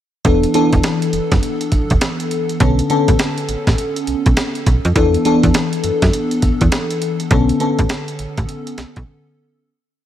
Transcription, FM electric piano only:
0.25 E3 B3 D4 A4
0.54 E3 B3 D4 A4
2.60 D3 B3 C#4 A4
2.89 D3 B3 C#4 A4
4.95 E3 B3 D4 A4
5.25 E3 B3 D4 A4
7.31 D3 B3 C#4 A4
7.60 D3 B3 C#4 A4

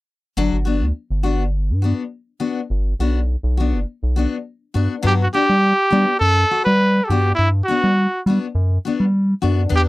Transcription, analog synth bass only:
0.37 G1
0.52 G1
0.81 D2
1.11 G1
1.70 G2
2.70 G1
3.00 B1
3.43 B1
3.73 F#1
4.03 B1
4.75 G2
5.04 G2
5.50 G3
5.93 G3
6.21 F#2
6.67 G3
7.10 G2
7.39 G2
7.84 G3
8.26 G3
8.55 F#2
9.00 G3
9.44 F#2
9.72 E2

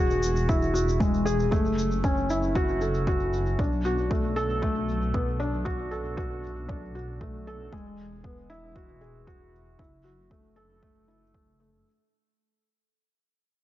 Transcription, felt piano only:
Already playing: F#4 G#4
0.49 E4
0.74 F#4
1.00 G#3
1.25 G#4
1.51 A3
2.04 C#4
2.30 E4
2.56 F#4
2.81 A4
3.08 F#4
3.59 D4
3.85 F#4
4.10 A3
4.36 A4
4.62 A3
5.14 B3
5.40 D4
5.65 F#4
5.91 A4
6.17 F#4
6.69 D4
6.95 F#4
7.21 A3
7.47 A4
7.73 G#3
8.24 B3
8.50 E4
8.76 F#4
9.01 G#4
9.27 F#4
9.79 E4
10.04 F#4
10.31 A3
10.56 A4
10.82 A3
11.08 E4
11.34 A3
11.60 A3

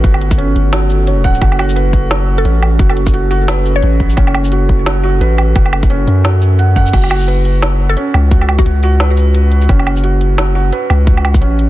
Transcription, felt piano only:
Already playing: C#4 F#4 B4
0.38 C#4
0.73 F#4
1.07 C#5
1.24 F#5
1.41 F#4
1.59 F#4
1.76 B4
2.45 C#4
2.79 F#4
3.14 F#4
3.31 F#4
3.48 B4
4.17 C#4
4.52 F#4
4.86 F#4
5.03 F#4
5.21 B4
5.90 C#4
6.24 F#4
6.59 F#5
6.76 F#5
6.93 F#4
7.10 F#4
7.28 B4
7.97 C#4
8.31 F#4
8.66 F#4
8.83 F#4
9.00 B4
9.69 C#4
10.04 F#4
10.38 F#4
10.55 F#4
10.73 B4
11.41 C#4

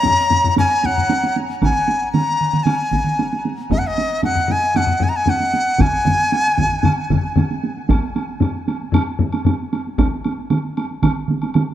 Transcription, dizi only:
Already playing: A#5
0.59 G#5
0.86 F#5
1.63 G#5
2.13 A#5
2.63 G#5
3.72 D#5
3.78 F#5
3.87 D#5
4.25 F#5
4.52 G#5
4.77 F#5
5.03 G#5
5.09 A#5
5.16 G#5
5.30 F#5
5.81 G#5

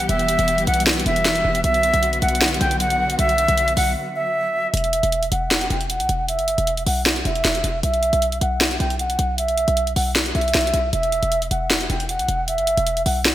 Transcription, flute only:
0.09 E5
0.67 F#5
1.06 E5
1.64 E5
2.22 F#5
2.61 G5
2.80 F#5
3.19 E5
3.77 F#5
4.16 E5
4.74 E5
5.32 F#5
5.70 G5
5.90 F#5
6.28 E5
6.87 F#5
7.25 E5
7.83 E5
8.41 F#5
8.80 G5
8.99 F#5
9.38 E5
9.96 F#5
10.35 E5
10.93 E5
11.51 F#5
11.90 G5
12.09 F#5
12.48 E5
13.06 F#5

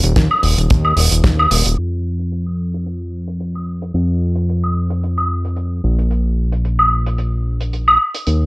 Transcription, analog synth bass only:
0.03 D#1
0.16 D#2
0.43 D#1
0.57 D#1
0.71 D#2
0.97 D#1
1.11 D#1
1.24 D#2
1.51 D#1
1.66 D#1
1.78 F2
3.94 F2
5.84 A#1
8.27 D#2

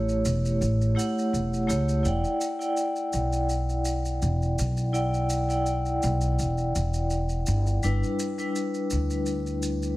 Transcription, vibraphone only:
Already playing: A3 E4 G4 C#5
0.95 A3 E4 G4 F#5
1.67 A3 E4 G4 C#5
2.03 E4 D5 F#5 G5
2.59 E4 D5 F#5 G5
4.93 E4 D5 F#5 G5
5.49 E4 D5 F#5 G5
7.83 G3 D4 E4 B4
8.38 G3 D4 E4 B4

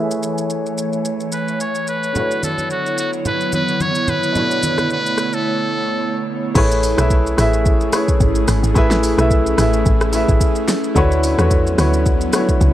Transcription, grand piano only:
Already playing: A3 E4 G#4 B4
0.00 E5
2.13 D3 A3 E4 F#4
2.18 B4 C#5
4.32 B2 A3 D4
4.37 E4 C#5
6.54 A3 E4 G#4 B4 C#5
6.97 A3 E4 G#4 B4 E5
7.37 A3 E4 G#4 B4 E5
7.92 A3 E4 G#4 B4 C#5
8.74 A3 E4 G#4 B4 E5
9.17 A3 E4 G#4 B4 E5
9.57 A3 E4 G#4 B4 E5
10.12 A3 E4 G#4 B4 E5
10.95 D3 A3 E4 F#4 B4 C#5
11.37 D3 A3 E4 F#4 B4 C#5
11.77 D3 A3 E4 F#4 B4 C#5
12.32 D3 A3 E4 F#4 B4 C#5

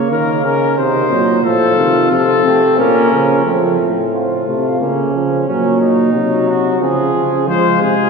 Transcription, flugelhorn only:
Already playing: A#3
0.44 C#4
0.78 D#4
1.44 F4
2.44 C4
2.78 C#4
3.46 C4
4.14 F4
4.81 C#4
5.48 C#4
5.81 D#4
6.48 F#4
6.82 G#4
7.49 F4

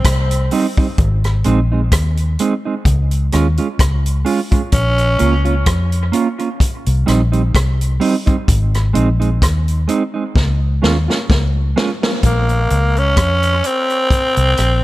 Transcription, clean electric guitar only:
0.51 G3 C4 D#4
0.78 G3 C4 D#4
1.45 G#3 C4 D#4
1.72 G#3 C4 D#4
2.40 G#3 C4 D#4
2.65 G#3 C4 D#4
3.32 G#3 C#4 F4
3.58 G#3 C#4 F4
4.25 G#3 C#4 F4
4.51 G#3 C#4 F4
5.19 A#3 C#4 F4
5.45 A#3 C#4 F4
6.12 A#3 C#4 F4
6.39 A#3 C#4 F4
7.06 G3 C4 D#4
7.32 G3 C4 D#4
8.00 G3 C4 D#4
8.26 G3 C4 D#4
8.93 G#3 C4 D#4
9.20 G#3 C4 D#4
9.88 G#3 C4 D#4
10.14 G#3 C4 D#4
10.82 G#3 C#4 F4
11.08 G#3 C#4 F4
11.76 G#3 C#4 F4
12.02 G#3 C#4 F4

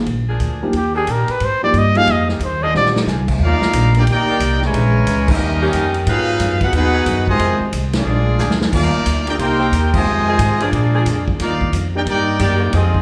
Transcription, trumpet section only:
3.44 D#4 A#4 D5 F5
3.98 D#4 A#4 D5 G5
4.10 D#4 A#4 D5 G5
4.64 E4 A#4 C#5 G#5
5.31 C#4 G4 A#4 D#5
6.07 D#4 G#4 B4 F5
6.62 D#4 G#4 B4 F#5
6.75 D#4 G#4 B4 F#5
7.28 F4 C5 D#5 G#5
7.96 A#3 F4 G#4 D5
8.74 D#4 A#4 D5 F5
9.28 D#4 A#4 D5 G5
9.40 D#4 A#4 C5 G5
9.94 F4 C5 D#5 G#5
10.62 A#3 F4 G#4 D5
11.40 D#4 A#4 D5 F5
11.95 D#4 A#4 D5 G5
12.08 D#4 A#4 D5 G5
12.41 D#4 A#4 D5 G5
12.75 C4 F4 G#4 D#5

